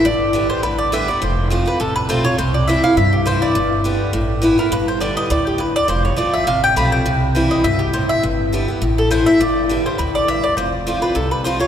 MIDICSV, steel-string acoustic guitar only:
0, 0, Header, 1, 2, 480
1, 0, Start_track
1, 0, Tempo, 292255
1, 84, Time_signature, 4, 2, 24, 8
1, 19172, End_track
2, 0, Start_track
2, 0, Title_t, "Steel-string acoustic guitar"
2, 0, Program_c, 0, 25
2, 80, Note_on_c, 0, 43, 93
2, 543, Note_on_c, 0, 50, 85
2, 553, Note_on_c, 0, 55, 77
2, 564, Note_on_c, 0, 59, 84
2, 575, Note_on_c, 0, 67, 88
2, 995, Note_off_c, 0, 43, 0
2, 1009, Note_off_c, 0, 50, 0
2, 1014, Note_off_c, 0, 55, 0
2, 1020, Note_off_c, 0, 59, 0
2, 1025, Note_off_c, 0, 67, 0
2, 1038, Note_on_c, 0, 50, 98
2, 1493, Note_off_c, 0, 50, 0
2, 1512, Note_on_c, 0, 50, 89
2, 1523, Note_on_c, 0, 55, 97
2, 1531, Note_on_c, 0, 59, 88
2, 1542, Note_on_c, 0, 67, 106
2, 1764, Note_off_c, 0, 50, 0
2, 1766, Note_off_c, 0, 67, 0
2, 1769, Note_off_c, 0, 55, 0
2, 1774, Note_off_c, 0, 59, 0
2, 1786, Note_on_c, 0, 67, 65
2, 1817, Note_on_c, 0, 59, 55
2, 1994, Note_off_c, 0, 67, 0
2, 1998, Note_on_c, 0, 41, 96
2, 2009, Note_off_c, 0, 59, 0
2, 2470, Note_on_c, 0, 53, 81
2, 2484, Note_on_c, 0, 57, 93
2, 2489, Note_on_c, 0, 60, 91
2, 2497, Note_on_c, 0, 65, 92
2, 2701, Note_off_c, 0, 65, 0
2, 2721, Note_on_c, 0, 65, 65
2, 2722, Note_off_c, 0, 53, 0
2, 2730, Note_off_c, 0, 57, 0
2, 2732, Note_off_c, 0, 60, 0
2, 2749, Note_on_c, 0, 60, 55
2, 2912, Note_off_c, 0, 41, 0
2, 2940, Note_off_c, 0, 65, 0
2, 2953, Note_on_c, 0, 48, 92
2, 2955, Note_off_c, 0, 60, 0
2, 3428, Note_on_c, 0, 53, 88
2, 3439, Note_on_c, 0, 57, 96
2, 3448, Note_on_c, 0, 60, 102
2, 3448, Note_on_c, 0, 65, 98
2, 3664, Note_off_c, 0, 65, 0
2, 3681, Note_off_c, 0, 53, 0
2, 3684, Note_on_c, 0, 65, 58
2, 3686, Note_off_c, 0, 57, 0
2, 3687, Note_off_c, 0, 60, 0
2, 3706, Note_on_c, 0, 60, 51
2, 3870, Note_off_c, 0, 48, 0
2, 3902, Note_off_c, 0, 65, 0
2, 3913, Note_off_c, 0, 60, 0
2, 3916, Note_on_c, 0, 48, 95
2, 4397, Note_on_c, 0, 52, 86
2, 4414, Note_on_c, 0, 55, 88
2, 4422, Note_on_c, 0, 60, 86
2, 4425, Note_on_c, 0, 64, 91
2, 4645, Note_off_c, 0, 52, 0
2, 4647, Note_off_c, 0, 64, 0
2, 4654, Note_off_c, 0, 55, 0
2, 4657, Note_off_c, 0, 60, 0
2, 4666, Note_on_c, 0, 64, 69
2, 4690, Note_on_c, 0, 60, 52
2, 4831, Note_off_c, 0, 48, 0
2, 4873, Note_off_c, 0, 64, 0
2, 4879, Note_on_c, 0, 43, 98
2, 4884, Note_off_c, 0, 60, 0
2, 5347, Note_on_c, 0, 52, 85
2, 5361, Note_on_c, 0, 55, 93
2, 5369, Note_on_c, 0, 60, 96
2, 5376, Note_on_c, 0, 64, 101
2, 5793, Note_off_c, 0, 43, 0
2, 5809, Note_off_c, 0, 52, 0
2, 5816, Note_off_c, 0, 55, 0
2, 5820, Note_off_c, 0, 60, 0
2, 5823, Note_off_c, 0, 64, 0
2, 5832, Note_on_c, 0, 43, 97
2, 6309, Note_on_c, 0, 50, 77
2, 6321, Note_on_c, 0, 55, 88
2, 6326, Note_on_c, 0, 59, 93
2, 6334, Note_on_c, 0, 67, 84
2, 6750, Note_off_c, 0, 43, 0
2, 6770, Note_off_c, 0, 50, 0
2, 6776, Note_off_c, 0, 55, 0
2, 6779, Note_off_c, 0, 59, 0
2, 6783, Note_off_c, 0, 67, 0
2, 6785, Note_on_c, 0, 45, 93
2, 7253, Note_on_c, 0, 52, 95
2, 7268, Note_on_c, 0, 57, 88
2, 7274, Note_on_c, 0, 59, 93
2, 7290, Note_on_c, 0, 64, 93
2, 7497, Note_off_c, 0, 64, 0
2, 7513, Note_off_c, 0, 52, 0
2, 7517, Note_on_c, 0, 64, 62
2, 7520, Note_off_c, 0, 59, 0
2, 7521, Note_off_c, 0, 57, 0
2, 7539, Note_on_c, 0, 59, 51
2, 7706, Note_off_c, 0, 45, 0
2, 7738, Note_off_c, 0, 64, 0
2, 7749, Note_on_c, 0, 43, 103
2, 7750, Note_off_c, 0, 59, 0
2, 8217, Note_on_c, 0, 50, 73
2, 8235, Note_on_c, 0, 55, 84
2, 8237, Note_on_c, 0, 59, 94
2, 8245, Note_on_c, 0, 67, 78
2, 8669, Note_off_c, 0, 43, 0
2, 8685, Note_off_c, 0, 50, 0
2, 8694, Note_off_c, 0, 55, 0
2, 8695, Note_off_c, 0, 59, 0
2, 8699, Note_off_c, 0, 67, 0
2, 8706, Note_on_c, 0, 45, 100
2, 9167, Note_on_c, 0, 43, 91
2, 9170, Note_off_c, 0, 45, 0
2, 9641, Note_off_c, 0, 43, 0
2, 9658, Note_on_c, 0, 41, 100
2, 10124, Note_on_c, 0, 53, 84
2, 10136, Note_on_c, 0, 57, 77
2, 10147, Note_on_c, 0, 60, 83
2, 10153, Note_on_c, 0, 65, 86
2, 10584, Note_off_c, 0, 41, 0
2, 10600, Note_off_c, 0, 53, 0
2, 10605, Note_off_c, 0, 57, 0
2, 10611, Note_off_c, 0, 60, 0
2, 10614, Note_off_c, 0, 65, 0
2, 10625, Note_on_c, 0, 48, 106
2, 11107, Note_on_c, 0, 53, 85
2, 11114, Note_on_c, 0, 57, 103
2, 11120, Note_on_c, 0, 60, 93
2, 11129, Note_on_c, 0, 65, 93
2, 11549, Note_off_c, 0, 48, 0
2, 11571, Note_off_c, 0, 53, 0
2, 11575, Note_off_c, 0, 57, 0
2, 11578, Note_off_c, 0, 60, 0
2, 11582, Note_off_c, 0, 65, 0
2, 11589, Note_on_c, 0, 48, 93
2, 12068, Note_on_c, 0, 52, 86
2, 12077, Note_on_c, 0, 55, 83
2, 12088, Note_on_c, 0, 60, 89
2, 12090, Note_on_c, 0, 64, 93
2, 12510, Note_off_c, 0, 48, 0
2, 12532, Note_off_c, 0, 52, 0
2, 12537, Note_off_c, 0, 55, 0
2, 12542, Note_off_c, 0, 60, 0
2, 12543, Note_off_c, 0, 64, 0
2, 12554, Note_on_c, 0, 47, 97
2, 13015, Note_off_c, 0, 47, 0
2, 13031, Note_on_c, 0, 45, 86
2, 13494, Note_off_c, 0, 45, 0
2, 13523, Note_on_c, 0, 43, 97
2, 14001, Note_on_c, 0, 50, 79
2, 14010, Note_on_c, 0, 55, 85
2, 14022, Note_on_c, 0, 59, 86
2, 14025, Note_on_c, 0, 67, 88
2, 14240, Note_off_c, 0, 67, 0
2, 14250, Note_off_c, 0, 50, 0
2, 14254, Note_off_c, 0, 55, 0
2, 14260, Note_off_c, 0, 59, 0
2, 14260, Note_on_c, 0, 67, 62
2, 14287, Note_on_c, 0, 59, 52
2, 14438, Note_off_c, 0, 43, 0
2, 14472, Note_off_c, 0, 67, 0
2, 14479, Note_on_c, 0, 45, 90
2, 14486, Note_off_c, 0, 59, 0
2, 14955, Note_on_c, 0, 52, 93
2, 14965, Note_on_c, 0, 57, 97
2, 14977, Note_on_c, 0, 59, 93
2, 14979, Note_on_c, 0, 64, 102
2, 15188, Note_off_c, 0, 64, 0
2, 15207, Note_off_c, 0, 52, 0
2, 15208, Note_on_c, 0, 64, 60
2, 15212, Note_off_c, 0, 57, 0
2, 15218, Note_off_c, 0, 59, 0
2, 15239, Note_on_c, 0, 59, 51
2, 15396, Note_off_c, 0, 45, 0
2, 15427, Note_off_c, 0, 64, 0
2, 15442, Note_off_c, 0, 59, 0
2, 15449, Note_on_c, 0, 43, 94
2, 15921, Note_on_c, 0, 50, 82
2, 15932, Note_on_c, 0, 55, 97
2, 15944, Note_on_c, 0, 59, 85
2, 15951, Note_on_c, 0, 67, 89
2, 16361, Note_off_c, 0, 43, 0
2, 16379, Note_off_c, 0, 50, 0
2, 16385, Note_off_c, 0, 55, 0
2, 16391, Note_off_c, 0, 59, 0
2, 16394, Note_off_c, 0, 67, 0
2, 16408, Note_on_c, 0, 45, 86
2, 16863, Note_off_c, 0, 45, 0
2, 16890, Note_on_c, 0, 43, 90
2, 17344, Note_off_c, 0, 43, 0
2, 17372, Note_on_c, 0, 41, 90
2, 17846, Note_on_c, 0, 53, 83
2, 17851, Note_on_c, 0, 57, 85
2, 17862, Note_on_c, 0, 60, 83
2, 17871, Note_on_c, 0, 65, 100
2, 18081, Note_off_c, 0, 65, 0
2, 18093, Note_off_c, 0, 53, 0
2, 18095, Note_off_c, 0, 57, 0
2, 18100, Note_off_c, 0, 60, 0
2, 18101, Note_on_c, 0, 65, 67
2, 18124, Note_on_c, 0, 60, 52
2, 18283, Note_off_c, 0, 41, 0
2, 18312, Note_on_c, 0, 48, 99
2, 18313, Note_off_c, 0, 65, 0
2, 18324, Note_off_c, 0, 60, 0
2, 18808, Note_on_c, 0, 53, 93
2, 18819, Note_on_c, 0, 57, 88
2, 18829, Note_on_c, 0, 60, 87
2, 18832, Note_on_c, 0, 65, 112
2, 19023, Note_off_c, 0, 65, 0
2, 19043, Note_on_c, 0, 65, 66
2, 19050, Note_off_c, 0, 60, 0
2, 19053, Note_off_c, 0, 53, 0
2, 19059, Note_off_c, 0, 57, 0
2, 19070, Note_on_c, 0, 60, 50
2, 19172, Note_off_c, 0, 48, 0
2, 19172, Note_off_c, 0, 60, 0
2, 19172, Note_off_c, 0, 65, 0
2, 19172, End_track
0, 0, End_of_file